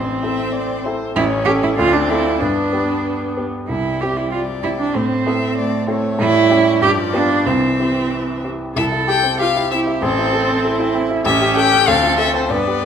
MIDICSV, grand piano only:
0, 0, Header, 1, 2, 480
1, 0, Start_track
1, 0, Key_signature, 0, "major"
1, 0, Tempo, 627615
1, 888, Time_signature, 2, 2, 24, 8
1, 5213, Tempo, 644468
1, 7133, Tempo, 625652
1, 9784, End_track
2, 0, Start_track
2, 0, Title_t, "Grand piano"
2, 0, Program_c, 0, 0
2, 0, Note_on_c, 0, 33, 63
2, 60, Control_c, 0, 64, 127
2, 166, Note_off_c, 0, 33, 0
2, 175, Note_on_c, 0, 60, 49
2, 176, Note_on_c, 0, 64, 43
2, 182, Note_on_c, 0, 69, 52
2, 621, Note_off_c, 0, 60, 0
2, 621, Note_off_c, 0, 64, 0
2, 624, Note_off_c, 0, 69, 0
2, 655, Note_on_c, 0, 60, 52
2, 656, Note_on_c, 0, 64, 56
2, 660, Note_on_c, 0, 69, 51
2, 867, Note_off_c, 0, 60, 0
2, 867, Note_off_c, 0, 64, 0
2, 869, Note_off_c, 0, 69, 0
2, 885, Note_on_c, 0, 33, 81
2, 901, Control_c, 0, 64, 0
2, 1038, Control_c, 0, 64, 127
2, 1115, Note_off_c, 0, 33, 0
2, 1128, Note_on_c, 0, 61, 63
2, 1131, Note_on_c, 0, 67, 61
2, 1133, Note_on_c, 0, 69, 68
2, 1340, Note_off_c, 0, 61, 0
2, 1341, Note_off_c, 0, 67, 0
2, 1342, Note_off_c, 0, 69, 0
2, 1368, Note_on_c, 0, 38, 81
2, 1374, Control_c, 0, 64, 0
2, 1515, Control_c, 0, 64, 127
2, 1597, Note_off_c, 0, 38, 0
2, 1606, Note_on_c, 0, 60, 48
2, 1608, Note_on_c, 0, 65, 54
2, 1617, Note_on_c, 0, 69, 57
2, 1821, Note_off_c, 0, 60, 0
2, 1823, Note_off_c, 0, 65, 0
2, 1827, Note_off_c, 0, 69, 0
2, 1849, Note_on_c, 0, 43, 68
2, 1857, Control_c, 0, 64, 0
2, 1995, Control_c, 0, 64, 127
2, 2082, Note_off_c, 0, 43, 0
2, 2085, Note_on_c, 0, 59, 47
2, 2091, Note_on_c, 0, 67, 50
2, 2544, Note_off_c, 0, 59, 0
2, 2547, Note_off_c, 0, 67, 0
2, 2579, Note_on_c, 0, 59, 38
2, 2581, Note_on_c, 0, 67, 40
2, 2798, Note_off_c, 0, 59, 0
2, 2799, Note_off_c, 0, 67, 0
2, 2825, Note_on_c, 0, 36, 54
2, 2836, Control_c, 0, 64, 0
2, 2976, Control_c, 0, 64, 127
2, 3060, Note_off_c, 0, 36, 0
2, 3077, Note_on_c, 0, 60, 45
2, 3077, Note_on_c, 0, 64, 42
2, 3078, Note_on_c, 0, 67, 47
2, 3523, Note_off_c, 0, 60, 0
2, 3523, Note_off_c, 0, 64, 0
2, 3524, Note_off_c, 0, 67, 0
2, 3547, Note_on_c, 0, 60, 42
2, 3551, Note_on_c, 0, 64, 45
2, 3552, Note_on_c, 0, 67, 46
2, 3763, Note_off_c, 0, 60, 0
2, 3765, Note_off_c, 0, 64, 0
2, 3765, Note_off_c, 0, 67, 0
2, 3784, Note_on_c, 0, 45, 58
2, 3802, Control_c, 0, 64, 0
2, 3924, Control_c, 0, 64, 127
2, 4017, Note_off_c, 0, 45, 0
2, 4023, Note_on_c, 0, 60, 51
2, 4027, Note_on_c, 0, 64, 48
2, 4031, Note_on_c, 0, 69, 56
2, 4467, Note_off_c, 0, 60, 0
2, 4469, Note_off_c, 0, 64, 0
2, 4471, Note_off_c, 0, 69, 0
2, 4491, Note_on_c, 0, 60, 54
2, 4494, Note_on_c, 0, 64, 55
2, 4497, Note_on_c, 0, 69, 61
2, 4709, Note_off_c, 0, 60, 0
2, 4710, Note_off_c, 0, 64, 0
2, 4712, Note_off_c, 0, 69, 0
2, 4732, Note_on_c, 0, 45, 77
2, 4751, Control_c, 0, 64, 0
2, 4855, Control_c, 0, 64, 127
2, 4966, Note_off_c, 0, 45, 0
2, 4967, Note_on_c, 0, 61, 60
2, 4969, Note_on_c, 0, 64, 68
2, 4976, Note_on_c, 0, 67, 67
2, 5186, Note_off_c, 0, 61, 0
2, 5187, Note_off_c, 0, 64, 0
2, 5191, Note_off_c, 0, 67, 0
2, 5211, Note_on_c, 0, 43, 78
2, 5227, Control_c, 0, 64, 0
2, 5329, Control_c, 0, 64, 127
2, 5442, Note_off_c, 0, 43, 0
2, 5451, Note_on_c, 0, 59, 57
2, 5453, Note_on_c, 0, 65, 55
2, 5456, Note_on_c, 0, 67, 58
2, 5669, Note_off_c, 0, 59, 0
2, 5670, Note_off_c, 0, 65, 0
2, 5671, Note_off_c, 0, 67, 0
2, 5694, Note_on_c, 0, 36, 64
2, 5709, Control_c, 0, 64, 0
2, 5850, Control_c, 0, 64, 127
2, 5930, Note_off_c, 0, 36, 0
2, 5941, Note_on_c, 0, 60, 44
2, 5944, Note_on_c, 0, 64, 42
2, 5947, Note_on_c, 0, 67, 46
2, 6394, Note_off_c, 0, 60, 0
2, 6396, Note_off_c, 0, 64, 0
2, 6397, Note_off_c, 0, 67, 0
2, 6420, Note_on_c, 0, 60, 35
2, 6424, Note_on_c, 0, 67, 41
2, 6426, Note_on_c, 0, 64, 36
2, 6637, Note_off_c, 0, 60, 0
2, 6639, Note_off_c, 0, 67, 0
2, 6640, Note_off_c, 0, 64, 0
2, 6660, Note_on_c, 0, 36, 66
2, 6676, Control_c, 0, 64, 0
2, 6780, Note_on_c, 0, 64, 54
2, 6810, Control_c, 0, 64, 127
2, 6894, Note_on_c, 0, 67, 55
2, 6969, Note_off_c, 0, 64, 0
2, 7013, Note_on_c, 0, 60, 58
2, 7085, Note_off_c, 0, 67, 0
2, 7129, Note_on_c, 0, 67, 60
2, 7205, Note_off_c, 0, 60, 0
2, 7262, Note_on_c, 0, 64, 61
2, 7325, Note_off_c, 0, 67, 0
2, 7379, Note_on_c, 0, 60, 53
2, 7451, Note_off_c, 0, 64, 0
2, 7497, Note_on_c, 0, 64, 60
2, 7569, Note_off_c, 0, 60, 0
2, 7586, Note_off_c, 0, 36, 0
2, 7612, Note_on_c, 0, 33, 76
2, 7616, Note_off_c, 0, 64, 0
2, 7630, Control_c, 0, 64, 0
2, 7739, Note_on_c, 0, 64, 57
2, 7759, Control_c, 0, 64, 127
2, 7850, Note_on_c, 0, 69, 70
2, 7928, Note_off_c, 0, 64, 0
2, 7978, Note_on_c, 0, 60, 72
2, 8042, Note_off_c, 0, 69, 0
2, 8094, Note_on_c, 0, 69, 71
2, 8165, Note_off_c, 0, 60, 0
2, 8209, Note_on_c, 0, 64, 71
2, 8282, Note_off_c, 0, 69, 0
2, 8324, Note_on_c, 0, 60, 62
2, 8399, Note_off_c, 0, 64, 0
2, 8446, Note_on_c, 0, 64, 69
2, 8516, Note_off_c, 0, 60, 0
2, 8536, Note_off_c, 0, 33, 0
2, 8560, Note_on_c, 0, 33, 84
2, 8565, Note_off_c, 0, 64, 0
2, 8578, Control_c, 0, 64, 0
2, 8680, Note_on_c, 0, 67, 66
2, 8697, Control_c, 0, 64, 127
2, 8801, Note_on_c, 0, 69, 71
2, 8873, Note_off_c, 0, 67, 0
2, 8921, Note_on_c, 0, 61, 66
2, 8993, Note_off_c, 0, 69, 0
2, 9025, Note_off_c, 0, 33, 0
2, 9037, Note_on_c, 0, 38, 82
2, 9041, Note_off_c, 0, 61, 0
2, 9055, Control_c, 0, 64, 0
2, 9156, Note_on_c, 0, 65, 64
2, 9195, Control_c, 0, 64, 127
2, 9273, Note_on_c, 0, 69, 64
2, 9352, Note_off_c, 0, 65, 0
2, 9400, Note_on_c, 0, 60, 53
2, 9473, Note_off_c, 0, 69, 0
2, 9510, Note_off_c, 0, 38, 0
2, 9519, Note_on_c, 0, 43, 69
2, 9525, Note_off_c, 0, 60, 0
2, 9540, Control_c, 0, 64, 0
2, 9647, Note_on_c, 0, 67, 52
2, 9670, Control_c, 0, 64, 127
2, 9784, Note_off_c, 0, 43, 0
2, 9784, Note_off_c, 0, 67, 0
2, 9784, End_track
0, 0, End_of_file